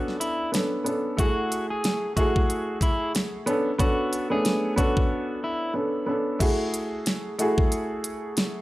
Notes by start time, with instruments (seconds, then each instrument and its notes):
Already playing: upright piano B3 C#4 D4 A4, clean electric guitar F#4
0.08 snare
0.20 clean electric guitar E4, closed hi-hat
0.52 upright piano B3 C#4 D4 A4, snare, closed hi-hat
0.84 upright piano B3 C#4 D4 A4, closed hi-hat
1.17 upright piano A3 E4 F#4 G#4, clean electric guitar F#4, kick, closed hi-hat
1.52 closed hi-hat
1.70 clean electric guitar G#4
1.84 snare, closed hi-hat
2.16 upright piano A3 E4 F#4 G#4, clean electric guitar F#4, kick, closed hi-hat
2.36 kick
2.50 closed hi-hat
2.81 clean electric guitar E4, kick, closed hi-hat
3.15 snare, closed hi-hat
3.46 upright piano B3 C#4 D4 A4, closed hi-hat
3.78 upright piano B3 C#4 D4 A4, clean electric guitar F#4, kick, closed hi-hat
4.13 closed hi-hat
4.30 upright piano A3 B3 C#4 D4, clean electric guitar G#4
4.45 snare, closed hi-hat
4.76 upright piano B3 C#4 D4 A4, clean electric guitar F#4, kick, closed hi-hat
4.97 kick
5.44 clean electric guitar E4
5.74 upright piano B3 C#4 D4 A4
6.06 upright piano B3 C#4 D4 A4
6.39 upright piano A3 E4 F#4 G#4, kick, closed hi-hat, crash
6.74 closed hi-hat
7.06 snare, closed hi-hat
7.38 upright piano A3 E4 F#4 G#4, closed hi-hat
7.58 kick
7.72 closed hi-hat
8.04 closed hi-hat
8.37 snare, closed hi-hat